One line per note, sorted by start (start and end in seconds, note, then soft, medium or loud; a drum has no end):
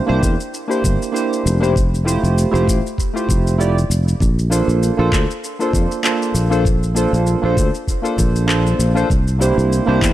0.07 0.19 C2 loud
0.07 0.33 A#3 medium
0.07 0.34 D4 medium
0.07 0.34 E4 medium
0.07 0.34 G4 medium
0.07 0.35 C5 loud
0.23 0.35 E2 medium
0.23 kick loud
0.23 shaker medium
0.40 shaker soft
0.54 shaker soft
0.68 1.10 A#3 medium
0.68 1.10 D4 medium
0.68 1.11 E4 medium
0.68 1.11 G4 medium
0.68 1.11 C5 medium
0.68 shaker soft
0.84 0.96 G1 medium
0.84 kick medium
0.84 shaker medium
1.02 shaker soft
1.12 1.57 A#3 medium
1.12 1.57 D4 medium
1.12 1.58 E4 medium
1.12 1.58 G4 medium
1.12 1.58 C5 medium
1.16 shaker soft
1.33 shaker soft
1.46 2.16 F1 medium
1.46 shaker medium
1.60 1.73 A#3 medium
1.60 1.73 D4 medium
1.60 1.74 E4 medium
1.60 1.74 G4 medium
1.60 1.74 C5 medium
1.60 shaker soft
1.76 kick loud
1.76 shaker soft
1.95 shaker soft
2.04 2.49 A3 medium
2.04 2.49 E4 medium
2.04 2.49 F4 medium
2.04 2.50 G4 medium
2.04 2.50 C5 medium
2.04 shaker medium
2.23 2.44 F1 medium
2.23 shaker soft
2.38 shaker soft
2.51 2.64 F1 loud
2.51 2.78 A3 medium
2.51 2.78 E4 medium
2.51 2.79 F4 medium
2.51 2.79 G4 medium
2.51 2.79 C5 medium
2.51 shaker soft
2.68 2.80 A1 medium
2.68 kick loud
2.68 shaker medium
2.87 shaker soft
2.98 kick medium
2.98 shaker soft
3.13 3.55 A3 medium
3.13 3.56 E4 medium
3.13 3.56 F4 medium
3.13 3.56 G4 medium
3.13 3.56 C5 medium
3.13 shaker soft
3.29 3.84 F1 medium
3.29 kick medium
3.29 shaker medium
3.47 shaker soft
3.58 3.77 A3 medium
3.58 3.77 E4 medium
3.58 3.77 F4 medium
3.58 3.78 G4 medium
3.58 3.78 D5 medium
3.58 shaker soft
3.78 shaker soft
3.90 4.13 F1 medium
3.90 shaker medium
4.08 shaker soft
4.20 4.61 A#1 medium
4.20 kick loud
4.20 shaker soft
4.39 shaker soft
4.50 4.94 A#3 medium
4.50 4.94 D4 medium
4.50 4.95 F4 medium
4.50 4.95 A4 medium
4.50 4.95 C5 medium
4.50 shaker medium
4.68 4.89 A#1 medium
4.68 shaker soft
4.83 shaker soft
4.97 5.09 A#1 medium
4.97 5.24 A#3 medium
4.97 5.24 D4 medium
4.97 5.24 F4 medium
4.97 5.24 A4 medium
4.97 5.25 C5 medium
5.12 5.25 D2 medium
5.12 kick medium
5.12 clap medium
5.12 shaker medium
5.31 shaker soft
5.44 shaker soft
5.59 6.00 A#3 medium
5.59 6.01 D4 medium
5.59 6.01 F4 medium
5.59 6.01 A4 medium
5.59 6.02 C5 medium
5.59 shaker soft
5.73 5.86 F2 medium
5.73 kick medium
5.73 shaker medium
5.91 shaker soft
6.03 6.47 A#3 medium
6.03 6.47 D4 medium
6.03 6.48 F4 medium
6.03 6.48 A4 medium
6.03 6.48 C5 medium
6.03 clap medium
6.03 shaker soft
6.22 shaker soft
6.34 7.05 A#1 medium
6.34 shaker medium
6.50 6.65 A#3 medium
6.50 6.66 D4 medium
6.50 6.66 F4 medium
6.50 6.66 A4 medium
6.50 6.67 C5 medium
6.50 shaker soft
6.65 kick loud
6.65 shaker soft
6.83 shaker soft
6.95 7.39 A#3 medium
6.95 7.39 D4 medium
6.95 7.39 F4 medium
6.95 7.40 A4 medium
6.95 7.40 C5 medium
6.95 shaker medium
7.13 7.34 A#1 medium
7.13 shaker soft
7.27 shaker soft
7.42 7.53 A#1 loud
7.42 7.68 A#3 medium
7.42 7.69 D4 medium
7.42 7.69 F4 medium
7.42 7.70 A4 medium
7.42 7.70 C5 loud
7.57 7.69 D2 medium
7.57 kick medium
7.57 shaker medium
7.74 shaker soft
7.88 kick medium
7.88 shaker soft
8.02 8.44 A#3 medium
8.02 8.45 D4 medium
8.02 8.45 F4 medium
8.02 8.45 A4 medium
8.02 8.46 C5 medium
8.02 shaker soft
8.18 8.74 A#1 loud
8.18 kick medium
8.18 shaker medium
8.36 shaker soft
8.46 8.91 A#3 medium
8.46 8.92 D4 medium
8.46 8.92 F4 medium
8.46 8.92 A4 medium
8.46 8.93 C5 medium
8.46 clap medium
8.46 shaker soft
8.67 shaker soft
8.79 9.03 A#1 medium
8.79 shaker medium
8.95 9.08 A#3 medium
8.95 9.08 D4 medium
8.95 9.08 F4 medium
8.95 9.08 A4 medium
8.95 9.09 C5 loud
8.95 shaker soft
9.10 9.50 C2 medium
9.10 kick loud
9.10 shaker soft
9.28 shaker soft
9.39 9.83 A#3 medium
9.39 9.84 D4 medium
9.39 9.84 E4 medium
9.39 9.84 G4 medium
9.39 9.85 C5 medium
9.39 shaker medium
9.58 9.79 C2 medium
9.58 shaker soft
9.72 shaker soft
9.86 9.98 C2 loud
9.86 10.13 A#3 medium
9.86 10.13 D4 medium
9.86 10.13 E4 medium
9.86 10.13 G4 medium
9.86 10.13 C5 loud
10.02 10.13 E2 medium
10.02 kick medium
10.02 clap medium
10.02 shaker medium